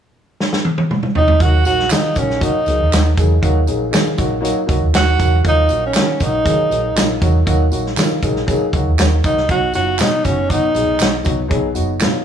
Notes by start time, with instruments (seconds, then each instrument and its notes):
0.40 snare
0.53 snare
0.65 high tom
0.78 high tom
0.91 mid tom
1.03 mid tom
1.15 tenor saxophone D#4, floor tom
1.28 floor tom
1.40 fingered electric bass D#2, upright piano F#3 A#3 D#4 F#4, tenor saxophone F#4, kick, closed hi-hat
1.65 fingered electric bass A#1, upright piano F#3 A#3 D#4 F#4, tenor saxophone F#4, closed hi-hat, tambourine
1.80 snare
1.90 fingered electric bass D#3, upright piano F#3 A#3 D#4 F4, tenor saxophone D#4, snare, clap, closed hi-hat, tambourine
2.15 fingered electric bass A#1, upright piano F#3 A#3 D#4 F#4, tenor saxophone C#4, kick, closed hi-hat, tambourine
2.30 snare
2.40 upright piano F#3 A#3 D#4 F#4, tenor saxophone D#4, kick, closed hi-hat, tambourine
2.66 fingered electric bass C#2, upright piano F#3 A#3 D#4 G#4, closed hi-hat, tambourine
2.80 fingered electric bass D#2
2.91 fingered electric bass D#2, upright piano F#3 A#3 D#4 F#4, snare, clap, closed hi-hat, tambourine
3.17 fingered electric bass E2, upright piano F#3 A#3 D#4 G#4, kick, closed hi-hat, tambourine
3.42 fingered electric bass D#2, upright piano F#3 A#3 D#4 F#4, kick, closed hi-hat, tambourine
3.67 fingered electric bass A#1, upright piano F#3 A#3 D#4 G#4, closed hi-hat, tambourine
3.91 fingered electric bass D#3, upright piano F#3 A#3 D#4 G#4, snare, clap, closed hi-hat, tambourine
4.17 fingered electric bass A#1, upright piano F#3 A#3 D#4 F#4, kick, closed hi-hat, tambourine
4.41 upright piano F#3 A#3 D#4 F#4, closed hi-hat
4.45 tambourine
4.66 fingered electric bass C#2, upright piano F#3 A#3 D#4 F#4, kick, closed hi-hat, tambourine
4.81 fingered electric bass D#2
4.93 upright piano F#3 A#3 D#4 F#4, tenor saxophone F#4, snare, clap, closed hi-hat, tambourine
5.18 fingered electric bass E2, upright piano F#3 A#3 D#4 F#4, kick, closed hi-hat, tambourine
5.43 fingered electric bass D#2, upright piano F#3 A#3 D#4 F4, kick, closed hi-hat, tambourine
5.48 tenor saxophone D#4
5.69 fingered electric bass A#1, upright piano F#3 A#3 D#4 F#4, closed hi-hat, tambourine
5.86 tenor saxophone C#4
5.94 fingered electric bass D#3, upright piano F#3 A#3 D#4 F#4, snare, clap, closed hi-hat, tambourine
6.20 fingered electric bass A#1, upright piano F#3 A#3 D#4 F#4, tenor saxophone D#4, kick, closed hi-hat, tambourine
6.44 fingered electric bass D#3, upright piano F#3 A#3 D#4 G#4, kick, closed hi-hat, tambourine
6.69 fingered electric bass A#1, upright piano F#3 A#3 D#4 G#4, closed hi-hat, tambourine
6.95 fingered electric bass A#1, upright piano F#3 A#3 D#4 F4, snare, clap, closed hi-hat, tambourine
7.20 fingered electric bass E2, upright piano F#3 A#3 D#4 F#4, kick, closed hi-hat, tambourine
7.46 fingered electric bass D#2, upright piano F#3 A#3 D#4 F#4, kick, closed hi-hat, tambourine
7.71 fingered electric bass A#1, upright piano F#3 A#3 D#4 F#4, closed hi-hat, tambourine
7.86 snare
7.96 fingered electric bass D#3, upright piano F#3 A#3 D#4 F4, snare, clap, closed hi-hat, tambourine
8.22 fingered electric bass A#1, upright piano F#3 A#3 D#4 G#4, kick, closed hi-hat, tambourine
8.36 snare
8.47 upright piano F#3 A#3 D#4 G#4, kick, closed hi-hat, tambourine
8.72 fingered electric bass C#2, upright piano F#3 A#3 D#4 F#4, kick, closed hi-hat, tambourine
8.87 fingered electric bass D#2
8.98 fingered electric bass D#2, upright piano F#3 A#3 D#4 F#4, snare, clap, closed hi-hat, tambourine
9.24 upright piano F#3 A#3 D#4 F#4, tenor saxophone D#4, kick, closed hi-hat, tambourine
9.37 snare
9.49 fingered electric bass B1, upright piano F#3 B3 D#4 F#4, tenor saxophone F#4, kick, closed hi-hat
9.74 fingered electric bass F#1, upright piano F#3 B3 D#4 F4, tenor saxophone F#4, closed hi-hat, tambourine
9.99 fingered electric bass B2, upright piano F#3 B3 D#4 F#4, tenor saxophone D#4, snare, clap, closed hi-hat, tambourine
10.24 fingered electric bass F#1, upright piano F#3 B3 D#4 F#4, tenor saxophone C#4, kick, closed hi-hat, tambourine
10.50 upright piano F#3 B3 D#4 F#4, tenor saxophone D#4, kick, closed hi-hat, tambourine
10.74 fingered electric bass A#1, upright piano F#3 B3 D#4 G#4, closed hi-hat, tambourine
10.87 fingered electric bass B1
11.00 fingered electric bass B1, upright piano F#3 B3 D#4 F#4, snare, clap, closed hi-hat, tambourine
11.24 fingered electric bass C2, upright piano F#3 B3 D#4 F#4, kick, closed hi-hat, tambourine
11.48 fingered electric bass B1, upright piano F#3 B3 D#4 G#4, kick, closed hi-hat
11.74 fingered electric bass F#1, upright piano F#3 B3 D#4 F#4, closed hi-hat, tambourine
11.99 fingered electric bass B2, upright piano F#3 B3 D#4 F4, snare, clap, closed hi-hat, tambourine